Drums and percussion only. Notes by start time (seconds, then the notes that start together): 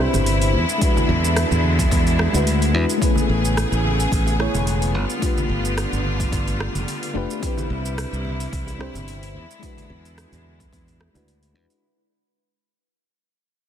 0.13 open hi-hat, high bongo, high conga, low conga, shaker
0.26 open hi-hat, shaker
0.42 open hi-hat, shaker
0.69 shaker
0.81 kick, open hi-hat, shaker
0.97 high bongo, high conga, shaker
1.10 low conga
1.25 shaker
1.37 cross-stick, open hi-hat, shaker
1.51 low conga, shaker
1.64 high conga
1.79 kick, open hi-hat, high bongo, shaker
1.91 kick, open hi-hat, shaker
2.07 open hi-hat, shaker
2.19 cross-stick, high bongo
2.33 open hi-hat, high conga, shaker
2.47 open hi-hat, shaker
2.62 open hi-hat, shaker
2.89 open hi-hat, high bongo, shaker
3.02 kick, open hi-hat, shaker
3.15 high bongo, high conga, shaker
3.45 shaker
3.57 cross-stick, open hi-hat, shaker
3.72 shaker
3.84 high conga
4.00 open hi-hat, shaker
4.12 kick, open hi-hat, shaker
4.27 open hi-hat, high bongo, shaker
4.40 cross-stick
4.54 open hi-hat, high bongo, high conga, low conga, shaker
4.67 open hi-hat, shaker
4.82 open hi-hat, shaker
5.10 shaker
5.22 kick, open hi-hat, shaker
5.37 high bongo, high conga, shaker
5.65 shaker
5.78 cross-stick, open hi-hat, shaker
5.92 low conga, shaker
6.05 high conga
6.20 kick, open hi-hat, shaker
6.32 kick, open hi-hat, shaker
6.48 open hi-hat, shaker
6.60 cross-stick, high bongo
6.75 open hi-hat, high conga, shaker
6.88 open hi-hat, shaker
7.03 open hi-hat, shaker
7.31 high bongo, shaker
7.43 kick, open hi-hat, shaker
7.57 high bongo, high conga, shaker
7.86 shaker
7.98 cross-stick, open hi-hat, shaker
8.13 shaker
8.25 high conga
8.40 open hi-hat, shaker
8.53 kick, open hi-hat, shaker
8.67 open hi-hat, high bongo, shaker
8.81 cross-stick
8.94 open hi-hat, high bongo, high conga, low conga, shaker
9.08 open hi-hat, shaker
9.23 open hi-hat, shaker
9.51 shaker
9.63 kick, open hi-hat, shaker
9.77 open hi-hat, high bongo, high conga, shaker
9.90 low conga
10.05 open hi-hat, shaker
10.18 cross-stick, open hi-hat, shaker
10.32 open hi-hat, low conga, shaker
10.44 high conga
10.60 kick, open hi-hat, shaker
10.73 kick, open hi-hat, shaker
10.87 open hi-hat, low conga, shaker
11.00 cross-stick, high bongo
11.15 open hi-hat, high conga, shaker
11.28 open hi-hat, shaker
11.43 open hi-hat, shaker
11.69 open hi-hat, high bongo, shaker